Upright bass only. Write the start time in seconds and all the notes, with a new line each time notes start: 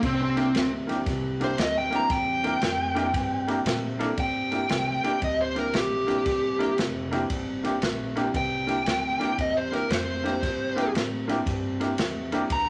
0.02 C2
0.54 D2
1.06 C2
1.58 D2
2.10 E2
2.62 F2
3.14 G2
3.65 A#2
4.18 G2
4.69 C2
5.04 muted upright bass stroke
5.22 D2
5.73 A#1
6.26 G1
6.61 muted upright bass stroke
6.78 F1
7.30 G1
7.82 A#1
8.34 C2
8.85 D2
9.38 E2
9.89 F2
10.42 G2
10.94 A2
11.46 G2
11.98 E2
12.50 D2